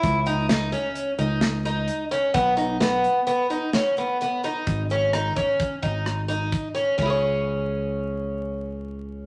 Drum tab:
RD |----------|----------|----------|x---------|
HH |xxxxxxxxxx|xxxxxxxxxx|xxxxxxxxxx|----------|
SD |--o---o---|--o---o---|--r---r---|----------|
BD |o---------|o---------|o--ooo--o-|o---------|